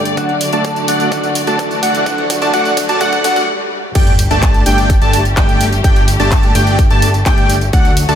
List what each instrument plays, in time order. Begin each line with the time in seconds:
Already playing: clean electric guitar G2 D3 G3 A3 D4, string section D3 A3 A4 D5, riser
0.05 closed hi-hat, tambourine
0.16 clean electric guitar D3 F#3 A3 D4, supersaw synth A3 D4 F#4 D5 F#5, string section F#4, analog synth lead F#5, kick, closed hi-hat, tambourine
0.29 closed hi-hat
0.41 open hi-hat, tambourine
0.53 supersaw synth A3 D4 F#4 D5 A5, analog synth lead A5, closed hi-hat, tambourine
0.64 kick, closed hi-hat, tambourine
0.76 closed hi-hat, tambourine
0.88 supersaw synth A3 D4 F#4 D5 F#5, analog synth lead F#5, open hi-hat, tambourine
1.00 closed hi-hat, tambourine
1.11 clean electric guitar D3 F#3 A3 D4, supersaw synth A3 D4 F#4 D5 F#5, analog synth lead F#5, kick, closed hi-hat, tambourine
1.24 closed hi-hat, tambourine
1.35 open hi-hat, tambourine
1.47 supersaw synth A3 D4 F#4 D5 A5, analog synth lead A5, closed hi-hat, tambourine
1.59 kick, closed hi-hat, tambourine
1.71 closed hi-hat, tambourine
1.83 supersaw synth A3 D4 F#4 D5 F#5, analog synth lead F#5, open hi-hat, tambourine
1.95 closed hi-hat, tambourine
2.05 clean electric guitar D3 F#3 A3 D4, supersaw synth A3 D4 F#4 D5 F#5, analog synth lead F#5, kick, closed hi-hat, tambourine
2.18 closed hi-hat
2.30 kick, open hi-hat, tambourine
2.42 supersaw synth A3 D4 F#4 D5 A5, analog synth lead A5, closed hi-hat, tambourine
2.52 clean electric guitar D3 F#3 A3 D4, supersaw synth A3 D4 F#4 D5 F#5, analog synth lead F#5, kick, closed hi-hat, tambourine
2.65 closed hi-hat, tambourine
2.77 kick, open hi-hat, tambourine
2.89 supersaw synth A3 D4 F#4 D5 A5, analog synth lead A5, closed hi-hat, tambourine
3.00 clean electric guitar D3 F#3 A3 D4, supersaw synth A3 D4 F#4 D5 F#5, analog synth lead F#5, kick, closed hi-hat, tambourine, swell
3.13 kick, closed hi-hat, tambourine
3.23 clean electric guitar D3 F#3 A3 D4, supersaw synth A3 D4 F#4 D5 F#5, analog synth lead F#5, kick, open hi-hat, tambourine
3.36 kick, closed hi-hat, tambourine
3.95 analog synth bass G1, string section D3 G3 A3 G4, supersaw synth A3 D4 G4 D5 G5, analog synth lead G5, kick, closed hi-hat, tambourine, crash, sub drop
4.07 closed hi-hat, tambourine
4.19 open hi-hat, tambourine
4.31 analog synth bass G1, supersaw synth A3 D4 G4 D5 A5, analog synth lead A5, closed hi-hat, tambourine
4.43 kick, clap, closed hi-hat, tambourine
4.54 closed hi-hat, tambourine
4.66 analog synth bass G1, supersaw synth A3 D4 G4 D5 G5, analog synth lead G5, open hi-hat, tambourine
4.78 closed hi-hat, tambourine
4.90 kick, closed hi-hat, tambourine
5.02 analog synth bass G1, supersaw synth A3 D4 G4 D5 A5, analog synth lead A5, closed hi-hat, tambourine
5.13 open hi-hat, tambourine
5.25 closed hi-hat, tambourine
5.37 analog synth bass G1, supersaw synth A3 D4 G4 D5 G5, analog synth lead G5, kick, clap, closed hi-hat, tambourine
5.49 closed hi-hat, tambourine
5.61 open hi-hat, tambourine
5.72 closed hi-hat, tambourine
5.84 analog synth bass G1, supersaw synth A3 D4 G4 D5 G5, analog synth lead G5, kick, closed hi-hat, tambourine
5.96 closed hi-hat, tambourine
6.08 open hi-hat, tambourine
6.20 analog synth bass G1, supersaw synth A3 D4 G4 D5 A5, analog synth lead A5, closed hi-hat, tambourine
6.31 kick, clap, closed hi-hat, tambourine
6.43 closed hi-hat, tambourine
6.55 analog synth bass G1, supersaw synth A3 D4 G4 D5 G5, analog synth lead G5, open hi-hat, tambourine
6.67 closed hi-hat, tambourine
6.79 kick, closed hi-hat, tambourine
6.90 analog synth bass G1, supersaw synth A3 D4 G4 D5 A5, analog synth lead A5, closed hi-hat, tambourine
7.02 open hi-hat, tambourine
7.14 closed hi-hat, tambourine
7.26 analog synth bass G1, supersaw synth A3 D4 G4 D5 G5, analog synth lead G5, kick, clap, closed hi-hat, tambourine
7.38 closed hi-hat, tambourine
7.50 open hi-hat, tambourine
7.61 closed hi-hat, tambourine
7.73 analog synth bass D2, string section F#3 A3 F#4, supersaw synth A3 D4 F#4 D5 F#5, analog synth lead F#5, kick, closed hi-hat, tambourine
7.85 closed hi-hat, tambourine
7.97 open hi-hat, tambourine
8.09 analog synth bass D2, supersaw synth A3 D4 F#4 D5 A5, analog synth lead A5, closed hi-hat, tambourine